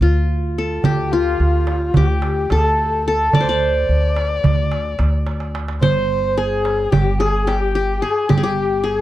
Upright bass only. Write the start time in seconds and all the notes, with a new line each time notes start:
0.01 D2
0.84 D2
1.40 D2
1.96 D2
2.51 D2
3.34 D2
3.89 D2
4.44 D2
4.99 D2
5.81 G1
6.93 G1
8.30 G1